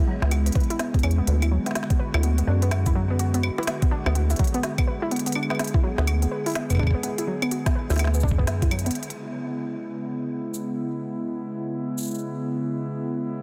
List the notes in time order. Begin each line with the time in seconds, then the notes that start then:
Already playing: C#3 G#3 B3 E4
0.07 F#3
0.22 C#2 B3, snare
0.31 F#4, closed hi-hat, claves
0.46 B3, closed hi-hat
0.52 B4, kick, closed hi-hat
0.55 closed hi-hat
0.60 closed hi-hat
0.63 closed hi-hat
0.70 E4, closed hi-hat
0.79 B3, snare, closed hi-hat
0.94 B3, kick, closed hi-hat
0.99 closed hi-hat
1.03 E2 C#4, closed hi-hat, claves
1.11 closed hi-hat
1.18 B3
1.27 D2 D3 B3 F#4, closed hi-hat
1.42 E4, closed hi-hat, claves
1.51 F#3
1.66 B3, snare, closed hi-hat
1.71 snare
1.75 F#4, snare, closed hi-hat
1.83 snare
1.90 B3, kick, closed hi-hat
1.99 B4
2.14 D2 E4, snare, claves
2.23 B3, closed hi-hat
2.38 B3, closed hi-hat
2.47 F#2 D4
2.62 B3, closed hi-hat
2.71 B3, snare, closed hi-hat, claves
2.86 E4, kick, closed hi-hat, cabasa
2.95 F#3
3.10 B3
3.19 F#4, closed hi-hat
3.34 B3, closed hi-hat
3.43 B4, claves
3.58 E4, snare
3.63 closed hi-hat
3.67 B3, snare, closed hi-hat
3.82 B3, kick, closed hi-hat
3.91 D4
4.06 D2 B3, snare, claves
4.15 B3, closed hi-hat
4.30 E4, closed hi-hat, cabasa
4.36 closed hi-hat
4.39 F#3, kick, closed hi-hat
4.44 closed hi-hat
4.47 closed hi-hat
4.54 B3, closed hi-hat
4.63 F#4, snare, closed hi-hat
4.78 B3, kick, closed hi-hat, claves
4.87 B4
5.02 E4
5.11 B3 G#4, closed hi-hat
5.16 closed hi-hat
5.19 closed hi-hat
5.26 B3, closed hi-hat
5.32 D4, closed hi-hat, claves
5.43 claves
5.50 B3, snare, claves
5.55 claves
5.59 B3, snare, closed hi-hat
5.64 closed hi-hat
5.67 closed hi-hat
5.74 E4, kick
5.83 F#3
5.98 D2 B3, snare
6.07 F#4, closed hi-hat, claves
6.22 B3, closed hi-hat
6.31 B4
6.46 E4, closed hi-hat
6.48 closed hi-hat
6.50 closed hi-hat
6.52 closed hi-hat
6.54 B3, snare, closed hi-hat
6.55 closed hi-hat
6.70 B3, kick, closed hi-hat, cabasa, claves
6.72 kick
6.75 kick, claves
6.77 D4, kick
6.79 kick, claves
6.83 kick
6.87 kick, claves
6.91 B3, kick
7.03 B3, closed hi-hat
7.18 E4, closed hi-hat
7.27 F#3
7.42 B3, closed hi-hat, claves
7.51 F#4, closed hi-hat
7.66 B3, kick, snare, closed hi-hat
7.75 B4
7.90 D2 E4, snare, closed hi-hat, cabasa
7.92 closed hi-hat
7.94 closed hi-hat
7.96 snare, closed hi-hat
7.97 snare, closed hi-hat
7.99 B3, closed hi-hat, claves
8.04 snare
8.07 snare
8.14 B3, cabasa
8.20 F#2 D4, kick, cabasa
8.28 kick, cabasa
8.38 B3, kick
8.47 B3, snare, closed hi-hat
8.62 E4, kick, closed hi-hat
8.71 F#3, closed hi-hat, claves
8.79 closed hi-hat
8.86 B3, closed hi-hat
8.91 closed hi-hat
8.95 C#3 G#3 B3 E4, closed hi-hat
9.03 closed hi-hat
9.10 closed hi-hat
10.54 cabasa
11.98 cabasa
12.00 cabasa
12.03 cabasa
12.05 cabasa
12.07 cabasa
12.11 cabasa
12.15 cabasa
12.18 cabasa